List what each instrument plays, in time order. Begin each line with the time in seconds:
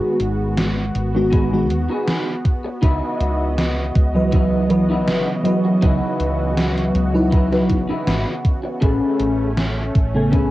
Already playing: fm electric piano D#3 G#3 B3 F#4, analog synth pad B3 F#4, clean electric guitar D#4 F#4 G#4 B4
0.20 fretless electric bass G#1, closed hi-hat
0.57 snare, closed hi-hat
0.95 fretless electric bass G#1, closed hi-hat
1.15 fm electric piano D#3 G#3 B3 F#4, muted clean electric guitar stroke
1.31 clean electric guitar D#4 F#4 G#4 B4, kick, closed hi-hat
1.52 fm electric piano D#3 G#3 B3 F#4
1.70 fretless electric bass D#2, closed hi-hat
1.90 clean electric guitar D#4 F#4 G#4 B4
2.08 snare, closed hi-hat
2.45 kick, closed hi-hat
2.65 muted clean electric guitar stroke
2.82 fretless electric bass C#2, analog synth pad C#3 E3 F#4 D#5, clean electric guitar D#4 E4 F#4 B4, kick, closed hi-hat
3.20 fretless electric bass C#2, closed hi-hat
3.58 snare, closed hi-hat
3.95 fretless electric bass C#2, kick, closed hi-hat
4.14 fm electric piano E3 F#3 B4 D#5, muted clean electric guitar stroke
4.32 clean electric guitar D#4 E4 F#4 B4, kick, closed hi-hat
4.69 fm electric piano E3 F#3 B4 D#5, closed hi-hat
4.90 clean electric guitar D#4 E4 F#4 B4
5.08 fretless electric bass G#1, snare, closed hi-hat
5.43 fm electric piano E3 F#3 B4 D#5, closed hi-hat
5.65 muted clean electric guitar stroke
5.82 fretless electric bass C#2, clean electric guitar D#4 E4 F#4 B4, kick, closed hi-hat
6.20 fretless electric bass C#2, closed hi-hat
6.57 snare, closed hi-hat
6.78 closed hi-hat
6.95 fretless electric bass C#2, closed hi-hat
7.14 fm electric piano F#3 D#4 E4 B4, muted clean electric guitar stroke
7.32 clean electric guitar D#4 E4 F#4 B4, kick, closed hi-hat
7.52 fm electric piano F#3 D#4 E4 B4, snare
7.70 fretless electric bass G#1, kick, closed hi-hat
7.89 clean electric guitar D#4 E4 F#4 B4, muted fretless electric bass stroke
8.07 fretless electric bass G#1, snare, closed hi-hat
8.45 kick, closed hi-hat
8.64 muted clean electric guitar stroke
8.81 fretless electric bass A1, analog synth pad A3 C#4, clean electric guitar C#4 G#4 A4 B4, kick, closed hi-hat
9.20 fretless electric bass A1, closed hi-hat
9.57 snare, closed hi-hat
9.95 fretless electric bass A1, kick, closed hi-hat
10.14 fm electric piano C#3 A3 B3 G#5, muted clean electric guitar stroke
10.32 clean electric guitar C#4 G#4 A4 B4, kick, closed hi-hat